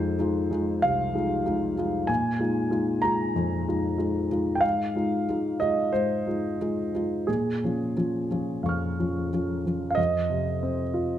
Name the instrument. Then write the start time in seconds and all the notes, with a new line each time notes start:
grand piano
Already playing: F2 G#3 D#4 F4 C5
0.19 G#3 D#4 F4
0.51 G#3 D#4 F4
0.82 C2 F5
1.14 G#3 D#4 F4
1.46 G#3 D#4 F4
1.78 G#3 D#4 F4
2.07 A#2 G#5
2.39 G#3 D#4 F4
2.70 G#3 D#4 F4
3.02 G#3 D#4 F4 A#5
3.36 F2
3.67 G#3 D#4 F4
3.98 G#3 D#4 F4
4.30 G#3 D#4 F4
4.55 G5
4.61 G#2 F5
4.95 G#3 D#4 F4
5.29 G#3 D#4 F4
5.60 G#3 D#4 F4 D#5
5.92 G#2 C5
6.27 G#3 D#4 F4
6.61 G#3 D#4 F4
6.94 G#3 D#4 F4
7.27 A#2 G#4
7.64 F3 C#4 F4
7.96 F3 C#4 F4
8.31 F3 C#4 F4
8.63 F2 F5 C#6
8.69 F6
9.00 F3 C#4 F4
9.33 F3 C#4 F4
9.66 F3 C#4 F4
9.90 F5
9.95 F2 D#5
10.30 C3
10.63 C4
10.94 F4